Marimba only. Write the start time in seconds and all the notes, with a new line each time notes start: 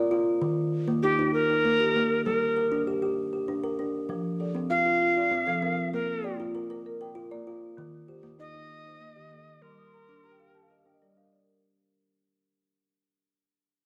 4.10 F3
4.40 D5
4.56 C4
4.87 F4
5.02 F4
5.17 D5
5.48 F3
5.63 A#4
5.94 A#3
6.25 G5
6.40 F4
6.71 A#4
6.86 A#4
7.01 G5
7.32 A#3
7.77 D#3
8.09 C5
8.23 A#3
8.55 D#4
8.71 D#4
8.87 C5
9.17 D#3
9.33 A4
9.64 G3 C6
9.71 D6
9.78 D#6
9.86 C6
9.93 A#5
10.01 C6
10.09 D4 D6
10.16 C6
10.23 A#5
10.32 G5
10.39 F5
10.47 G5
10.54 G4 A5
10.63 F5
10.70 D#5
10.78 F5
10.86 G5
10.94 D#5
11.02 G3 D5
11.09 D#5
11.17 F5
11.25 D#5
11.32 D5
11.39 A#4